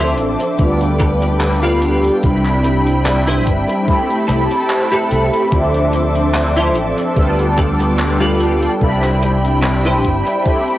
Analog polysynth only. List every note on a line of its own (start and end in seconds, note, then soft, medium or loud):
0.00 0.51 F3 medium
0.00 0.52 C4 medium
0.00 0.52 D4 medium
0.00 0.53 A4 medium
0.00 0.52 E5 medium
0.58 2.16 G3 medium
0.58 2.16 B3 medium
0.58 2.16 D4 medium
0.58 2.17 F4 medium
0.58 2.17 A4 medium
2.22 3.80 G3 medium
2.22 3.80 C4 medium
2.22 3.81 D4 medium
2.22 3.81 E4 medium
2.22 3.82 B5 medium
3.87 5.44 A3 medium
3.87 5.45 C4 medium
3.87 5.45 E4 medium
3.87 5.45 G4 medium
3.87 5.46 B5 medium
5.52 7.09 F3 medium
5.52 7.09 C4 medium
5.52 7.10 D4 medium
5.52 7.10 A4 medium
5.52 7.10 E5 medium
7.15 8.73 G3 medium
7.15 8.73 B3 medium
7.15 8.74 D4 medium
7.15 8.74 F4 medium
7.15 8.74 A4 medium
8.80 10.37 G3 medium
8.80 10.38 C4 medium
8.80 10.38 D4 medium
8.80 10.39 E4 medium
8.80 10.39 B5 medium
10.44 10.78 A3 medium
10.44 10.78 C4 medium
10.44 10.78 E4 medium
10.44 10.78 G4 medium
10.44 10.78 B5 medium